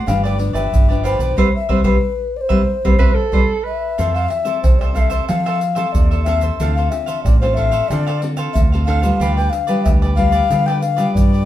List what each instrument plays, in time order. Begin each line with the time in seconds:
0.06 fingered electric bass G1, nylon-string guitar G2 F3 B3 D4, cavaquinho F4 G4 B4 D5, ocarina F5, pandeiro, tamborim, shaker, surdo
0.23 cavaquinho G4 B4 D5, ocarina D5, pandeiro, tamborim, shaker
0.39 nylon-string guitar F3 B3 D4, muted cavaquinho stroke, pandeiro
0.53 fingered electric bass G1, cavaquinho G4 B4 D5, ocarina E5, pandeiro, tamborim, shaker
0.72 fingered electric bass G1, nylon-string guitar D3, pandeiro, shaker, surdo
0.88 nylon-string guitar F3 B3 D4, cavaquinho G4 B4 D5, pandeiro, shaker
1.03 cavaquinho F4 G4 B4 D5, ocarina C5, pandeiro, tamborim, shaker
1.19 fingered electric bass B1, cavaquinho G4 B4 D5, pandeiro, shaker
1.37 fingered electric bass C2, nylon-string guitar G3 B3 C4, cavaquinho B4 C5 E5, surdo
1.56 ocarina E5
1.69 fingered electric bass C2, nylon-string guitar G3 B3 C4, cavaquinho B4 C5 E5, ocarina C5, surdo
1.84 fingered electric bass C2, nylon-string guitar G3 B3 C4, cavaquinho B4 C5 E5, ocarina B4, surdo
2.37 ocarina D5
2.41 ocarina C5
2.49 fingered electric bass C2, nylon-string guitar G3 B3 C4, cavaquinho B4 C5 E5, surdo
2.85 fingered electric bass C2, nylon-string guitar G3 B3 C4, cavaquinho B4 C5 E5, surdo
2.99 fingered electric bass C2, nylon-string guitar G3 B3 C4, tenor saxophone B4, cavaquinho B4 C5 E5, surdo
3.14 tenor saxophone A4
3.32 fingered electric bass C2, nylon-string guitar G3 B3 C4, cavaquinho B4 C5 E5, ocarina D5, surdo
3.64 tenor saxophone B4, ocarina E5
3.98 fingered electric bass F2, nylon-string guitar F3 C4 E4 A4, cavaquinho F4 A4 C5 E5, pandeiro, shaker, surdo
4.14 cavaquinho A4 C5 E5, ocarina F5, pandeiro, shaker
4.29 ocarina E5, muted cavaquinho stroke, pandeiro, tamborim
4.45 nylon-string guitar C4 E4 A4, cavaquinho A4 C5 E5, pandeiro, shaker
4.63 fingered electric bass C2, nylon-string guitar C3, ocarina C5, pandeiro, tamborim, shaker, surdo
4.79 cavaquinho A4 C5 E5, ocarina D5, pandeiro, tamborim, shaker
4.94 nylon-string guitar C4 E4 A4, cavaquinho F4 A4 C5 E5, ocarina F5, pandeiro, shaker, surdo
4.99 ocarina E5
5.10 cavaquinho A4 C5 E5, pandeiro, shaker
5.28 fingered electric bass F3, nylon-string guitar F3 C4 A4, cavaquinho F4 A4 C5 E5, ocarina F5, pandeiro, tamborim, shaker, surdo
5.46 cavaquinho A4 C5 E5, pandeiro, tamborim, shaker
5.60 muted cavaquinho stroke, pandeiro, shaker
5.75 nylon-string guitar C4 E4 A4, cavaquinho A4 C5 E5, pandeiro, tamborim, shaker
5.92 fingered electric bass D#2, nylon-string guitar C3, ocarina D5, pandeiro, shaker, surdo
6.11 cavaquinho A4 C5 E5, pandeiro, shaker
6.24 nylon-string guitar C4 E4 A4, cavaquinho F4 A4 C5, ocarina E5, pandeiro, tamborim, shaker
6.28 cavaquinho E5
6.41 cavaquinho A4 C5 E5, pandeiro, shaker
6.60 fingered electric bass D2, nylon-string guitar D3 C4 F4 A4, cavaquinho D4 A4 C5 F5, pandeiro, shaker, surdo
6.74 cavaquinho C5 F5, ocarina F5, pandeiro, shaker
6.79 cavaquinho A4
6.89 nylon-string guitar C4 F4 A4, ocarina E5, muted cavaquinho stroke, pandeiro, tamborim, shaker
7.06 cavaquinho A4 C5 F5, pandeiro, shaker
7.24 fingered electric bass A1, nylon-string guitar A2, ocarina D5, pandeiro, tamborim, shaker, surdo
7.41 nylon-string guitar C4 F4 A4, cavaquinho A4 C5 F5, ocarina C5, pandeiro, tamborim, shaker
7.54 cavaquinho D4 A4 C5, ocarina E5, pandeiro, surdo
7.58 cavaquinho F5
7.71 cavaquinho A4 C5 F5, pandeiro, shaker
7.88 fingered electric bass D3, nylon-string guitar D3 C4 F4 A4, cavaquinho D4 A4 C5 F5, ocarina D5, pandeiro, tamborim, shaker, surdo
8.06 cavaquinho A4 C5 F5, pandeiro, tamborim, shaker
8.22 nylon-string guitar C4 F4 A4, muted cavaquinho stroke, pandeiro
8.37 cavaquinho A4 C5 F5, pandeiro, tamborim, shaker
8.53 fingered electric bass D2, nylon-string guitar A2, ocarina E5, pandeiro, shaker, surdo
8.72 nylon-string guitar C4 F4 A4, cavaquinho A4 C5 F5, pandeiro, shaker
8.85 cavaquinho D4 A4 C5, ocarina F5, pandeiro, tamborim
8.89 cavaquinho F5
9.02 nylon-string guitar G3 B3 F4, cavaquinho A4 C5 F5, pandeiro, shaker
9.20 fingered electric bass D2, nylon-string guitar D3, cavaquinho F4 G4 B4 D5, pandeiro, shaker, surdo
9.36 cavaquinho G4 B4 D5, ocarina G5, pandeiro, shaker
9.50 ocarina F5, muted cavaquinho stroke, pandeiro, tamborim, shaker
9.67 nylon-string guitar G3 B3 F4, cavaquinho G4 B4 D5, pandeiro, shaker
9.84 fingered electric bass D2, nylon-string guitar D3, ocarina E5, pandeiro, tamborim, shaker, surdo
10.02 cavaquinho G4 B4 D5, pandeiro, tamborim, shaker
10.16 nylon-string guitar G3 B3 F4, cavaquinho F4 G4 B4 D5, ocarina F5, pandeiro, surdo
10.32 cavaquinho G4 B4 D5, pandeiro, shaker
10.50 fingered electric bass D3, nylon-string guitar D3 G3 B3 F4, cavaquinho F4 G4 B4 D5, pandeiro, tamborim, shaker, surdo
10.66 cavaquinho G4 B4 D5, ocarina G5, pandeiro, tamborim, shaker
10.81 ocarina F5, muted cavaquinho stroke, pandeiro, shaker
10.96 nylon-string guitar G3 B3 F4, cavaquinho G4 B4 D5, pandeiro, tamborim, shaker
11.14 fingered electric bass G2, nylon-string guitar D3, ocarina D5, pandeiro, shaker, surdo
11.32 cavaquinho G4 B4 D5, pandeiro, shaker